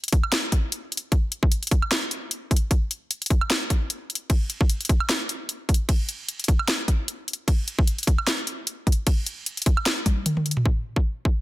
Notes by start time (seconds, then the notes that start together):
0.04 closed hi-hat
0.08 closed hi-hat
0.12 kick, closed hi-hat
0.23 high woodblock
0.32 snare, closed hi-hat
0.52 kick, closed hi-hat
0.72 closed hi-hat
0.92 closed hi-hat
0.97 closed hi-hat
1.12 kick, closed hi-hat
1.32 closed hi-hat
1.43 kick
1.52 closed hi-hat
1.63 closed hi-hat
1.67 closed hi-hat
1.71 kick, closed hi-hat
1.82 high woodblock
1.91 snare, closed hi-hat
2.11 closed hi-hat
2.31 closed hi-hat
2.51 kick, closed hi-hat
2.56 closed hi-hat
2.71 kick, closed hi-hat
2.91 closed hi-hat
3.11 closed hi-hat
3.22 closed hi-hat
3.26 closed hi-hat
3.30 kick, closed hi-hat
3.41 high woodblock
3.50 snare, closed hi-hat
3.70 kick, closed hi-hat
3.90 closed hi-hat
4.10 closed hi-hat
4.15 closed hi-hat
4.30 kick, closed hi-hat, ride
4.50 closed hi-hat
4.61 kick
4.70 closed hi-hat
4.81 closed hi-hat
4.85 closed hi-hat
4.89 kick, closed hi-hat
5.00 high woodblock
5.09 snare, closed hi-hat
5.29 closed hi-hat
5.49 closed hi-hat
5.69 kick, closed hi-hat
5.74 closed hi-hat
5.89 kick, closed hi-hat, ride
6.09 closed hi-hat
6.29 closed hi-hat
6.40 closed hi-hat
6.44 closed hi-hat
6.48 kick, closed hi-hat
6.59 high woodblock
6.68 snare, closed hi-hat
6.88 kick, closed hi-hat
7.08 closed hi-hat
7.28 closed hi-hat
7.33 closed hi-hat
7.48 kick, closed hi-hat, ride
7.68 closed hi-hat
7.79 kick
7.87 closed hi-hat
7.98 closed hi-hat
8.03 closed hi-hat
8.07 kick, closed hi-hat
8.18 high woodblock
8.27 snare, closed hi-hat
8.47 closed hi-hat
8.67 closed hi-hat
8.87 kick, closed hi-hat
8.92 closed hi-hat
9.07 kick, closed hi-hat, ride
9.26 closed hi-hat
9.46 closed hi-hat
9.57 closed hi-hat
9.62 closed hi-hat
9.66 kick, closed hi-hat
9.77 high woodblock
9.86 snare, closed hi-hat
10.06 kick, closed hi-hat, high tom
10.26 closed hi-hat, mid tom
10.37 mid tom
10.46 closed hi-hat
10.51 closed hi-hat
10.57 mid tom
10.65 kick
10.96 kick
11.25 kick